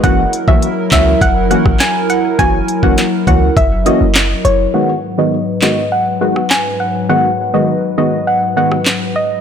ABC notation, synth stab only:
X:1
M:4/4
L:1/16
Q:1/4=102
K:G#m
V:1 name="Synth stab"
[E,A,CF] z2 [E,A,CF] z2 [E,A,CF] z3 [E,A,CF] z4 z | [E,A,CF] z2 [E,A,CF] z2 [E,A,CF] z3 [E,A,CF] z4 z | [D,G,B,F] z2 [D,G,B,F] z2 [D,G,B,F] z3 [D,G,B,F] z4 z | [D,G,B,F] z2 [D,G,B,F] z2 [D,G,B,F] z3 [D,G,B,F] z4 z |]